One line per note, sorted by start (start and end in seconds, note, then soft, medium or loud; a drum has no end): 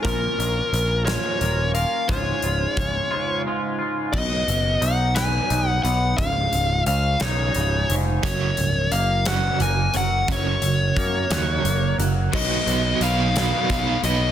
0.03 0.26 A#1 medium
0.03 0.72 A#2 medium
0.03 1.07 F3 medium
0.03 0.40 A#3 medium
0.03 0.40 C#4 loud
0.03 0.39 F4 medium
0.03 1.02 A#4 medium
0.03 0.38 A#4 loud
0.03 kick loud
0.03 closed hi-hat medium
0.39 0.60 A#1 medium
0.39 1.06 A#3 soft
0.39 1.06 C#4 medium
0.39 1.05 F4 medium
0.39 1.04 A#4 medium
0.39 closed hi-hat medium
0.73 1.16 A#1 medium
0.73 closed hi-hat medium
1.05 1.76 A#2 medium
1.05 1.75 F3 medium
1.05 1.38 A#3 medium
1.05 1.40 C#4 medium
1.05 1.40 F4 medium
1.05 1.41 A#4 medium
1.05 1.70 C#5 medium
1.05 snare loud
1.05 closed hi-hat medium
1.39 1.84 D#1 medium
1.39 1.76 A#3 medium
1.39 1.75 C#4 medium
1.39 1.74 F4 medium
1.39 1.73 A#4 medium
1.39 closed hi-hat medium
1.74 2.08 A#3 medium
1.74 2.08 C#4 medium
1.74 2.07 F4 medium
1.74 2.07 A#4 medium
1.74 2.10 F5 medium
1.74 closed hi-hat soft
2.08 2.31 C#1 medium
2.08 2.77 C#2 medium
2.08 2.77 G#2 medium
2.08 2.44 C#3 medium
2.08 2.43 G#3 medium
2.08 2.41 F4 medium
2.08 3.41 C#5 medium
2.08 kick loud
2.08 closed hi-hat medium
2.42 2.65 C#1 medium
2.42 3.11 C#3 medium
2.42 3.10 G#3 medium
2.42 3.09 F4 medium
2.42 closed hi-hat medium
2.77 2.99 C#1 medium
2.77 kick medium
2.77 closed hi-hat medium
3.11 3.81 C#2 medium
3.11 3.44 G#2 medium
3.11 3.45 C#3 medium
3.11 3.45 G#3 medium
3.11 3.46 F4 medium
3.45 4.11 G#2 medium
3.45 3.80 C#3 medium
3.45 3.79 G#3 medium
3.45 3.77 F4 medium
3.79 4.13 C#3 soft
3.79 4.12 G#3 medium
3.79 4.11 F4 medium
4.13 4.42 B1 medium
4.13 5.85 B2 medium
4.13 4.84 D#5 loud
4.13 kick loud
4.13 crash medium
4.48 4.76 F#1 medium
4.48 closed hi-hat medium
4.81 5.39 B1 medium
4.81 5.49 D#4 medium
4.81 5.14 F#5 medium
4.81 closed hi-hat medium
5.15 6.18 B4 medium
5.15 5.69 G#5 loud
5.15 snare loud
5.15 closed hi-hat medium
5.50 5.79 B1 medium
5.50 6.19 D#4 medium
5.50 closed hi-hat medium
5.69 5.83 F#5 loud
5.83 6.13 B1 medium
5.83 6.19 B3 medium
5.83 6.17 F#5 medium
5.83 closed hi-hat medium
6.18 6.47 C#1 loud
6.18 7.89 C#2 medium
6.18 6.82 F5 loud
6.18 kick loud
6.18 closed hi-hat medium
6.53 6.81 C#1 medium
6.53 closed hi-hat medium
6.86 7.15 C#2 medium
6.86 7.54 C#3 medium
6.86 7.22 F5 medium
6.86 closed hi-hat medium
7.20 7.50 B1 medium
7.20 8.23 D#4 medium
7.20 7.94 C#5 medium
7.20 snare loud
7.20 closed hi-hat medium
7.54 7.84 C#1 medium
7.54 8.24 C#3 medium
7.54 closed hi-hat medium
7.90 8.18 F1 medium
7.90 8.24 G#2 medium
7.90 closed hi-hat medium
8.23 8.52 F#1 medium
8.23 8.55 F#2 medium
8.23 9.94 F#2 medium
8.23 8.56 C#3 loud
8.23 8.56 F#3 loud
8.23 8.94 C#5 medium
8.23 kick loud
8.23 closed hi-hat medium
8.57 8.87 C#1 medium
8.57 8.88 F#2 medium
8.57 8.89 C#3 medium
8.57 closed hi-hat medium
8.92 9.49 F#1 medium
8.92 9.59 A#3 medium
8.92 9.27 F5 medium
8.92 closed hi-hat medium
9.25 9.58 F#2 medium
9.25 9.58 C#3 medium
9.25 9.58 F#3 medium
9.25 10.97 F#4 medium
9.25 9.59 F#5 loud
9.25 snare loud
9.25 closed hi-hat loud
9.60 9.89 F#1 medium
9.60 9.91 F#2 medium
9.60 9.91 C#3 medium
9.60 10.96 A#3 medium
9.60 9.93 G#5 loud
9.60 closed hi-hat medium
9.94 10.23 F#1 medium
9.94 10.25 F#2 medium
9.94 10.25 C#3 medium
9.94 11.65 F#3 medium
9.94 10.31 F#5 medium
9.94 closed hi-hat medium
10.28 10.57 F#1 medium
10.28 11.99 F#2 medium
10.28 10.60 F#2 medium
10.28 10.61 C#3 medium
10.28 10.61 F#3 loud
10.28 11.97 C#5 medium
10.28 kick loud
10.28 closed hi-hat medium
10.62 10.91 F#1 medium
10.62 10.94 F#2 medium
10.62 10.94 C#3 medium
10.62 closed hi-hat medium
10.97 11.25 F#2 medium
10.97 11.64 A#3 medium
10.97 kick medium
10.97 closed hi-hat medium
11.30 11.59 D#2 medium
11.30 11.63 F#2 medium
11.30 11.63 C#3 loud
11.30 11.63 F#3 medium
11.30 12.33 F#4 medium
11.30 snare loud
11.30 closed hi-hat loud
11.64 11.93 F#1 medium
11.64 11.96 F#2 medium
11.64 11.96 C#3 medium
11.64 12.33 A#3 medium
11.64 closed hi-hat medium
11.98 12.27 F#1 medium
11.98 12.30 F#2 medium
11.98 12.30 C#3 medium
11.98 12.33 F#3 medium
11.98 closed hi-hat medium
12.33 12.59 B1 loud
12.33 14.32 B2 medium
12.33 14.32 F#3 loud
12.33 12.70 B3 loud
12.33 12.69 D#4 loud
12.33 12.68 F#4 loud
12.33 12.67 B4 loud
12.33 13.04 D#5 loud
12.33 kick loud
12.33 crash loud
12.67 12.92 B1 medium
12.67 13.01 B3 medium
12.67 13.02 D#4 medium
12.67 13.03 F#4 medium
12.67 13.03 B4 medium
12.67 closed hi-hat medium
13.01 13.52 B1 medium
13.01 13.36 B3 medium
13.01 13.36 D#4 medium
13.01 13.35 F#4 medium
13.01 13.35 B4 medium
13.01 14.00 F5 loud
13.01 closed hi-hat medium
13.36 13.69 B3 medium
13.36 13.69 D#4 medium
13.36 13.70 F#4 medium
13.36 13.71 B4 medium
13.36 snare loud
13.36 closed hi-hat medium
13.70 13.95 B1 medium
13.70 14.05 B3 medium
13.70 14.05 D#4 medium
13.70 14.04 F#4 medium
13.70 14.04 B4 medium
13.70 kick medium
13.70 closed hi-hat medium
14.03 14.29 B1 medium
14.03 14.32 B3 medium
14.03 14.32 D#4 medium
14.03 14.32 F#4 medium
14.03 14.32 B4 medium
14.03 14.32 D#5 loud
14.03 closed hi-hat medium